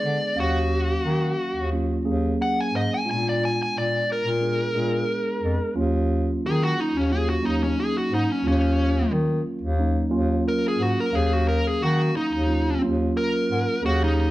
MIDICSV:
0, 0, Header, 1, 4, 480
1, 0, Start_track
1, 0, Key_signature, -6, "minor"
1, 0, Tempo, 672646
1, 266, Time_signature, 4, 2, 24, 8
1, 10209, End_track
2, 0, Start_track
2, 0, Title_t, "Lead electric guitar"
2, 0, Program_c, 0, 29
2, 0, Note_on_c, 0, 74, 75
2, 263, Note_off_c, 0, 74, 0
2, 285, Note_on_c, 0, 66, 87
2, 1206, Note_off_c, 0, 66, 0
2, 1726, Note_on_c, 0, 78, 93
2, 1858, Note_off_c, 0, 78, 0
2, 1858, Note_on_c, 0, 80, 69
2, 1954, Note_off_c, 0, 80, 0
2, 1971, Note_on_c, 0, 75, 74
2, 2081, Note_off_c, 0, 75, 0
2, 2099, Note_on_c, 0, 80, 86
2, 2194, Note_off_c, 0, 80, 0
2, 2217, Note_on_c, 0, 80, 74
2, 2324, Note_off_c, 0, 80, 0
2, 2348, Note_on_c, 0, 74, 80
2, 2439, Note_off_c, 0, 74, 0
2, 2462, Note_on_c, 0, 80, 72
2, 2567, Note_off_c, 0, 80, 0
2, 2587, Note_on_c, 0, 80, 73
2, 2678, Note_off_c, 0, 80, 0
2, 2698, Note_on_c, 0, 74, 79
2, 2914, Note_off_c, 0, 74, 0
2, 2942, Note_on_c, 0, 70, 87
2, 4094, Note_off_c, 0, 70, 0
2, 4613, Note_on_c, 0, 68, 96
2, 4722, Note_off_c, 0, 68, 0
2, 4733, Note_on_c, 0, 66, 75
2, 4855, Note_off_c, 0, 66, 0
2, 4855, Note_on_c, 0, 63, 81
2, 4973, Note_off_c, 0, 63, 0
2, 4973, Note_on_c, 0, 61, 87
2, 5071, Note_off_c, 0, 61, 0
2, 5084, Note_on_c, 0, 68, 88
2, 5197, Note_off_c, 0, 68, 0
2, 5206, Note_on_c, 0, 66, 86
2, 5308, Note_off_c, 0, 66, 0
2, 5319, Note_on_c, 0, 63, 81
2, 5435, Note_off_c, 0, 63, 0
2, 5450, Note_on_c, 0, 61, 81
2, 5550, Note_off_c, 0, 61, 0
2, 5564, Note_on_c, 0, 68, 80
2, 5677, Note_off_c, 0, 68, 0
2, 5693, Note_on_c, 0, 66, 75
2, 5791, Note_off_c, 0, 66, 0
2, 5811, Note_on_c, 0, 63, 77
2, 5936, Note_off_c, 0, 63, 0
2, 5936, Note_on_c, 0, 61, 84
2, 6033, Note_off_c, 0, 61, 0
2, 6050, Note_on_c, 0, 61, 87
2, 6503, Note_off_c, 0, 61, 0
2, 7481, Note_on_c, 0, 70, 84
2, 7596, Note_off_c, 0, 70, 0
2, 7621, Note_on_c, 0, 68, 75
2, 7725, Note_off_c, 0, 68, 0
2, 7725, Note_on_c, 0, 66, 74
2, 7838, Note_off_c, 0, 66, 0
2, 7852, Note_on_c, 0, 70, 82
2, 7951, Note_off_c, 0, 70, 0
2, 7959, Note_on_c, 0, 68, 73
2, 8086, Note_off_c, 0, 68, 0
2, 8086, Note_on_c, 0, 66, 87
2, 8188, Note_off_c, 0, 66, 0
2, 8195, Note_on_c, 0, 70, 85
2, 8328, Note_off_c, 0, 70, 0
2, 8328, Note_on_c, 0, 68, 74
2, 8429, Note_off_c, 0, 68, 0
2, 8438, Note_on_c, 0, 66, 85
2, 8664, Note_off_c, 0, 66, 0
2, 8682, Note_on_c, 0, 63, 78
2, 9139, Note_off_c, 0, 63, 0
2, 9399, Note_on_c, 0, 70, 106
2, 9857, Note_off_c, 0, 70, 0
2, 9888, Note_on_c, 0, 66, 89
2, 9999, Note_off_c, 0, 66, 0
2, 10018, Note_on_c, 0, 63, 75
2, 10209, Note_off_c, 0, 63, 0
2, 10209, End_track
3, 0, Start_track
3, 0, Title_t, "Tine electric piano"
3, 0, Program_c, 1, 4
3, 0, Note_on_c, 1, 56, 71
3, 0, Note_on_c, 1, 59, 63
3, 0, Note_on_c, 1, 62, 66
3, 0, Note_on_c, 1, 68, 80
3, 224, Note_off_c, 1, 56, 0
3, 224, Note_off_c, 1, 59, 0
3, 225, Note_off_c, 1, 62, 0
3, 227, Note_off_c, 1, 68, 0
3, 254, Note_on_c, 1, 61, 67
3, 256, Note_on_c, 1, 54, 70
3, 256, Note_on_c, 1, 58, 59
3, 261, Note_on_c, 1, 77, 75
3, 1165, Note_off_c, 1, 61, 0
3, 1166, Note_off_c, 1, 54, 0
3, 1166, Note_off_c, 1, 58, 0
3, 1168, Note_off_c, 1, 77, 0
3, 1225, Note_on_c, 1, 54, 71
3, 1226, Note_on_c, 1, 58, 63
3, 1228, Note_on_c, 1, 61, 65
3, 1233, Note_on_c, 1, 65, 77
3, 1451, Note_off_c, 1, 54, 0
3, 1452, Note_off_c, 1, 58, 0
3, 1453, Note_off_c, 1, 61, 0
3, 1455, Note_off_c, 1, 65, 0
3, 1461, Note_on_c, 1, 61, 77
3, 1463, Note_on_c, 1, 54, 88
3, 1464, Note_on_c, 1, 58, 84
3, 1466, Note_on_c, 1, 68, 98
3, 2142, Note_off_c, 1, 61, 0
3, 2143, Note_off_c, 1, 54, 0
3, 2143, Note_off_c, 1, 58, 0
3, 2144, Note_off_c, 1, 68, 0
3, 2172, Note_on_c, 1, 56, 73
3, 2177, Note_on_c, 1, 59, 67
3, 2180, Note_on_c, 1, 65, 72
3, 2182, Note_on_c, 1, 62, 62
3, 3084, Note_off_c, 1, 56, 0
3, 3086, Note_off_c, 1, 59, 0
3, 3088, Note_off_c, 1, 62, 0
3, 3088, Note_off_c, 1, 65, 0
3, 3144, Note_on_c, 1, 56, 58
3, 3144, Note_on_c, 1, 59, 54
3, 3149, Note_on_c, 1, 62, 55
3, 3152, Note_on_c, 1, 68, 61
3, 3370, Note_off_c, 1, 56, 0
3, 3370, Note_off_c, 1, 59, 0
3, 3372, Note_off_c, 1, 62, 0
3, 3374, Note_off_c, 1, 68, 0
3, 3383, Note_on_c, 1, 56, 73
3, 3386, Note_on_c, 1, 59, 61
3, 3391, Note_on_c, 1, 62, 64
3, 3392, Note_on_c, 1, 68, 83
3, 4063, Note_off_c, 1, 56, 0
3, 4064, Note_off_c, 1, 59, 0
3, 4067, Note_off_c, 1, 62, 0
3, 4067, Note_off_c, 1, 68, 0
3, 4098, Note_on_c, 1, 54, 82
3, 4101, Note_on_c, 1, 58, 71
3, 4107, Note_on_c, 1, 61, 81
3, 4109, Note_on_c, 1, 65, 88
3, 5007, Note_off_c, 1, 54, 0
3, 5009, Note_off_c, 1, 58, 0
3, 5011, Note_off_c, 1, 61, 0
3, 5013, Note_off_c, 1, 65, 0
3, 5060, Note_on_c, 1, 54, 56
3, 5064, Note_on_c, 1, 58, 55
3, 5064, Note_on_c, 1, 61, 55
3, 5069, Note_on_c, 1, 65, 67
3, 5287, Note_off_c, 1, 58, 0
3, 5288, Note_off_c, 1, 54, 0
3, 5290, Note_off_c, 1, 61, 0
3, 5292, Note_off_c, 1, 65, 0
3, 5295, Note_on_c, 1, 54, 75
3, 5296, Note_on_c, 1, 58, 72
3, 5301, Note_on_c, 1, 61, 64
3, 5304, Note_on_c, 1, 63, 83
3, 5979, Note_off_c, 1, 54, 0
3, 5979, Note_off_c, 1, 58, 0
3, 5982, Note_off_c, 1, 61, 0
3, 5984, Note_off_c, 1, 63, 0
3, 6009, Note_on_c, 1, 54, 76
3, 6018, Note_on_c, 1, 58, 60
3, 6020, Note_on_c, 1, 61, 68
3, 6023, Note_on_c, 1, 65, 80
3, 6923, Note_off_c, 1, 54, 0
3, 6927, Note_off_c, 1, 58, 0
3, 6928, Note_off_c, 1, 61, 0
3, 6930, Note_off_c, 1, 65, 0
3, 6976, Note_on_c, 1, 54, 76
3, 6983, Note_on_c, 1, 58, 68
3, 6983, Note_on_c, 1, 61, 69
3, 6988, Note_on_c, 1, 63, 79
3, 7198, Note_off_c, 1, 54, 0
3, 7204, Note_off_c, 1, 58, 0
3, 7205, Note_off_c, 1, 61, 0
3, 7206, Note_on_c, 1, 54, 93
3, 7212, Note_off_c, 1, 63, 0
3, 7212, Note_on_c, 1, 58, 83
3, 7214, Note_on_c, 1, 61, 86
3, 7217, Note_on_c, 1, 65, 101
3, 7895, Note_off_c, 1, 54, 0
3, 7898, Note_off_c, 1, 58, 0
3, 7898, Note_off_c, 1, 61, 0
3, 7900, Note_off_c, 1, 65, 0
3, 7933, Note_on_c, 1, 58, 67
3, 7934, Note_on_c, 1, 54, 70
3, 7938, Note_on_c, 1, 61, 70
3, 7942, Note_on_c, 1, 77, 77
3, 8844, Note_off_c, 1, 58, 0
3, 8845, Note_off_c, 1, 54, 0
3, 8847, Note_off_c, 1, 61, 0
3, 8849, Note_off_c, 1, 77, 0
3, 8894, Note_on_c, 1, 54, 66
3, 8901, Note_on_c, 1, 58, 58
3, 8904, Note_on_c, 1, 61, 59
3, 8904, Note_on_c, 1, 65, 75
3, 9125, Note_off_c, 1, 54, 0
3, 9129, Note_off_c, 1, 58, 0
3, 9130, Note_off_c, 1, 61, 0
3, 9130, Note_off_c, 1, 65, 0
3, 9134, Note_on_c, 1, 54, 77
3, 9141, Note_on_c, 1, 58, 70
3, 9142, Note_on_c, 1, 61, 68
3, 9146, Note_on_c, 1, 65, 86
3, 9818, Note_off_c, 1, 54, 0
3, 9822, Note_off_c, 1, 58, 0
3, 9822, Note_off_c, 1, 61, 0
3, 9824, Note_off_c, 1, 65, 0
3, 9863, Note_on_c, 1, 54, 74
3, 9864, Note_on_c, 1, 58, 70
3, 9865, Note_on_c, 1, 61, 63
3, 9866, Note_on_c, 1, 68, 84
3, 10209, Note_off_c, 1, 54, 0
3, 10209, Note_off_c, 1, 58, 0
3, 10209, Note_off_c, 1, 61, 0
3, 10209, Note_off_c, 1, 68, 0
3, 10209, End_track
4, 0, Start_track
4, 0, Title_t, "Bass clarinet"
4, 0, Program_c, 2, 71
4, 24, Note_on_c, 2, 50, 79
4, 138, Note_off_c, 2, 50, 0
4, 266, Note_on_c, 2, 39, 88
4, 692, Note_off_c, 2, 39, 0
4, 740, Note_on_c, 2, 51, 81
4, 956, Note_off_c, 2, 51, 0
4, 1109, Note_on_c, 2, 39, 73
4, 1424, Note_off_c, 2, 39, 0
4, 1466, Note_on_c, 2, 39, 85
4, 1678, Note_off_c, 2, 39, 0
4, 1949, Note_on_c, 2, 44, 78
4, 2060, Note_off_c, 2, 44, 0
4, 2191, Note_on_c, 2, 46, 82
4, 2614, Note_off_c, 2, 46, 0
4, 2666, Note_on_c, 2, 46, 83
4, 2878, Note_off_c, 2, 46, 0
4, 3030, Note_on_c, 2, 46, 83
4, 3344, Note_off_c, 2, 46, 0
4, 3384, Note_on_c, 2, 46, 79
4, 3597, Note_off_c, 2, 46, 0
4, 3865, Note_on_c, 2, 41, 75
4, 3977, Note_off_c, 2, 41, 0
4, 4109, Note_on_c, 2, 39, 91
4, 4533, Note_off_c, 2, 39, 0
4, 4591, Note_on_c, 2, 51, 82
4, 4801, Note_off_c, 2, 51, 0
4, 4951, Note_on_c, 2, 39, 79
4, 5264, Note_off_c, 2, 39, 0
4, 5303, Note_on_c, 2, 39, 82
4, 5516, Note_off_c, 2, 39, 0
4, 5783, Note_on_c, 2, 44, 75
4, 5896, Note_off_c, 2, 44, 0
4, 6022, Note_on_c, 2, 39, 98
4, 6449, Note_off_c, 2, 39, 0
4, 6499, Note_on_c, 2, 51, 85
4, 6714, Note_off_c, 2, 51, 0
4, 6861, Note_on_c, 2, 39, 87
4, 7179, Note_off_c, 2, 39, 0
4, 7218, Note_on_c, 2, 39, 82
4, 7434, Note_off_c, 2, 39, 0
4, 7696, Note_on_c, 2, 44, 81
4, 7812, Note_off_c, 2, 44, 0
4, 7939, Note_on_c, 2, 39, 101
4, 8368, Note_off_c, 2, 39, 0
4, 8428, Note_on_c, 2, 51, 93
4, 8639, Note_off_c, 2, 51, 0
4, 8791, Note_on_c, 2, 39, 85
4, 9104, Note_off_c, 2, 39, 0
4, 9142, Note_on_c, 2, 39, 87
4, 9356, Note_off_c, 2, 39, 0
4, 9628, Note_on_c, 2, 44, 78
4, 9739, Note_off_c, 2, 44, 0
4, 9868, Note_on_c, 2, 39, 98
4, 10209, Note_off_c, 2, 39, 0
4, 10209, End_track
0, 0, End_of_file